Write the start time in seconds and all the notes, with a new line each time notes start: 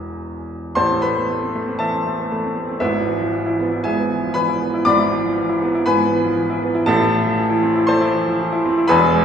Already playing: E1 E2 E3 B3 G#4 A#4 G#5 A#5
0.75 A1 A2 C5 A5 C6
0.91 C4
1.02 A3 B4 B5
1.16 B3
1.30 A3
1.43 C4
1.55 A3
1.67 C4
1.79 E3 A4 E5 A5
1.93 C4
2.06 A3
2.19 B3
2.31 A3
2.44 C4
2.56 A3
2.69 C4
2.80 G#1 G#2 E4 B4 E5
2.95 E4
3.07 E3
3.20 F3
3.33 E3
3.46 E4
3.59 B3
3.72 E4
3.84 G#2 G#4 E5 G#5
3.97 B3
4.11 E3
4.24 F3
4.34 E3 B4 G#5 B5
4.48 E4
4.61 B3
4.74 E4
4.85 G#1 G#2 D5 B5 D6
4.99 E4
5.12 E3
5.25 F3
5.38 E3
5.49 E4
5.62 B3
5.75 E4
5.86 G#2 B4 G#5 B5
5.99 B3
6.12 E3
6.25 F3
6.37 E3
6.50 E4
6.62 B3
6.75 E4
6.86 A1 A2 A4 E5 A5
7.00 E4
7.13 E3
7.25 F3
7.37 E3
7.50 E4
7.63 C4
7.76 E4
7.87 A3 C5 A5 C6
8.01 E4
8.15 E3
8.26 F3
8.39 E3
8.52 E4
8.65 C4
8.78 E4
8.88 E1 E2 B4 G#5 B5
9.02 G#4
9.15 G#3